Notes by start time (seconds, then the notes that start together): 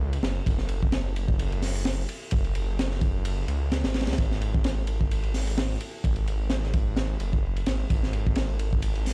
Already playing: C#2
0.13 ride
0.22 F#1, snare, ride
0.46 F#1, kick, ride
0.58 snare
0.69 ride
0.82 kick
0.92 snare, ride
1.16 ride
1.28 kick
1.39 ride
1.52 ride
1.62 snare, open hi-hat
1.75 ride
1.85 snare, ride
2.09 ride
2.31 F#1, kick, ride
2.44 ride
2.55 ride
2.79 snare, ride
2.91 snare
3.01 kick, ride
3.25 ride
3.48 C#2, ride
3.72 snare, ride
3.84 G#1, snare, ride
3.94 snare, ride
4.01 snare, ride
4.07 C#2, snare, ride
4.13 snare, ride
4.18 G#1, kick, ride
4.31 snare
4.42 ride
4.54 kick
4.64 snare, ride
4.87 ride
5.01 kick
5.11 ride
5.24 ride
5.34 snare, open hi-hat
5.47 ride
5.58 snare, ride
5.80 ride
6.04 G#1, kick, ride
6.16 ride
6.27 ride
6.50 snare, ride
6.64 snare
6.74 kick, ride
6.97 snare, ride
7.20 F#1, ride
7.33 kick
7.56 ride
7.66 G#1, snare, ride
7.90 G#1, kick, ride
8.03 snare
8.13 ride
8.27 kick
8.35 snare, ride
8.59 ride
8.73 kick
8.82 ride
8.95 ride
9.06 snare, open hi-hat